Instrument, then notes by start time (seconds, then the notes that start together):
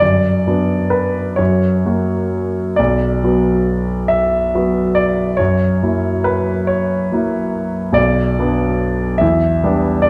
grand piano
0.00 F#2 D5
0.47 F#3 B3 D4
0.90 B4
1.36 F#2 C#5
1.86 F#3 A#3 F#4
2.76 B1 D5
3.23 F#3 B3 F#4
4.08 E5
4.55 F#3 B3 F#4
4.95 D5
5.37 F#2 C#5
5.83 F#3 A#3 E4
6.24 B4
6.67 C#5
7.12 F#3 A#3 E4
7.93 B1 D5
8.39 F#3 B3 D4
9.18 E2 E5
9.64 G3 B3 D4
10.02 D5